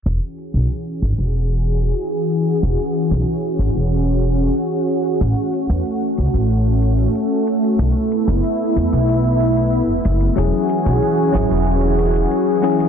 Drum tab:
SH |x-xxx-xxx-xxx-xx|x-xxx-xxx-xxx-xx|x-xxx-xxx-xxx-xx|x-xxx-xxx-xxx-xx|

SH |x-xxx-xxx-xxx-xx|